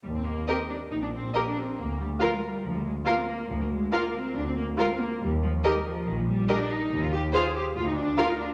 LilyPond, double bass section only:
\new Staff \with { instrumentName = "Double bass section" } { \clef bass \time 4/4 \key ees \major \tempo 4 = 140 ees,4 r4 bes,,4 r4 | d,4 r4 d,4 r4 | d,4 r4 d,4 r4 | ees,4 r4 bes,,4 r4 |
ees,4 r4 d,4 r4 | }